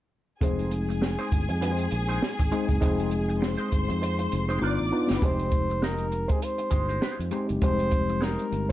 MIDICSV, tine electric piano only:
0, 0, Header, 1, 2, 480
1, 0, Start_track
1, 0, Key_signature, -4, "minor"
1, 0, Tempo, 600601
1, 331, Time_signature, 4, 2, 24, 8
1, 6970, End_track
2, 0, Start_track
2, 0, Title_t, "Tine electric piano"
2, 0, Program_c, 0, 4
2, 326, Note_on_c, 0, 56, 71
2, 331, Note_on_c, 0, 60, 67
2, 334, Note_on_c, 0, 63, 72
2, 336, Note_on_c, 0, 68, 80
2, 469, Control_c, 0, 64, 127
2, 1122, Note_off_c, 0, 56, 0
2, 1125, Note_off_c, 0, 60, 0
2, 1127, Note_off_c, 0, 63, 0
2, 1128, Note_off_c, 0, 68, 0
2, 2008, Note_on_c, 0, 56, 76
2, 2010, Note_on_c, 0, 60, 66
2, 2013, Note_on_c, 0, 63, 70
2, 2014, Note_on_c, 0, 68, 86
2, 2213, Note_off_c, 0, 56, 0
2, 2214, Note_off_c, 0, 60, 0
2, 2215, Note_off_c, 0, 63, 0
2, 2216, Note_off_c, 0, 68, 0
2, 2243, Note_on_c, 0, 56, 74
2, 2245, Note_on_c, 0, 60, 75
2, 2246, Note_on_c, 0, 63, 68
2, 2250, Note_on_c, 0, 68, 86
2, 3042, Note_off_c, 0, 56, 0
2, 3042, Note_off_c, 0, 60, 0
2, 3043, Note_off_c, 0, 63, 0
2, 3045, Note_off_c, 0, 68, 0
2, 3685, Note_on_c, 0, 62, 68
2, 3686, Note_on_c, 0, 59, 76
2, 3690, Note_on_c, 0, 65, 82
2, 3691, Note_on_c, 0, 63, 69
2, 3700, Control_c, 0, 64, 0
2, 3826, Control_c, 0, 64, 127
2, 3892, Note_off_c, 0, 59, 0
2, 3892, Note_off_c, 0, 62, 0
2, 3894, Note_off_c, 0, 63, 0
2, 3894, Note_off_c, 0, 65, 0
2, 3928, Note_on_c, 0, 59, 72
2, 3932, Note_on_c, 0, 62, 67
2, 3935, Note_on_c, 0, 63, 69
2, 3939, Note_on_c, 0, 65, 80
2, 4133, Note_off_c, 0, 59, 0
2, 4135, Note_off_c, 0, 62, 0
2, 4136, Note_off_c, 0, 63, 0
2, 4138, Note_off_c, 0, 65, 0
2, 4166, Note_on_c, 0, 56, 65
2, 4167, Note_on_c, 0, 60, 57
2, 4173, Note_on_c, 0, 63, 58
2, 4175, Note_on_c, 0, 67, 67
2, 4184, Control_c, 0, 64, 0
2, 4313, Control_c, 0, 64, 127
2, 4963, Note_off_c, 0, 56, 0
2, 4963, Note_off_c, 0, 60, 0
2, 4966, Note_off_c, 0, 63, 0
2, 4967, Note_off_c, 0, 67, 0
2, 5844, Note_on_c, 0, 56, 82
2, 5844, Note_on_c, 0, 60, 71
2, 5846, Note_on_c, 0, 63, 68
2, 5851, Note_on_c, 0, 67, 81
2, 6051, Note_off_c, 0, 56, 0
2, 6051, Note_off_c, 0, 60, 0
2, 6052, Note_off_c, 0, 63, 0
2, 6054, Note_off_c, 0, 67, 0
2, 6092, Note_on_c, 0, 55, 51
2, 6094, Note_on_c, 0, 60, 58
2, 6095, Note_on_c, 0, 63, 60
2, 6098, Note_on_c, 0, 67, 69
2, 6143, Note_on_c, 0, 56, 65
2, 6152, Note_off_c, 0, 55, 0
2, 6886, Note_off_c, 0, 60, 0
2, 6887, Note_off_c, 0, 63, 0
2, 6888, Note_off_c, 0, 67, 0
2, 6910, Note_off_c, 0, 56, 0
2, 6970, End_track
0, 0, End_of_file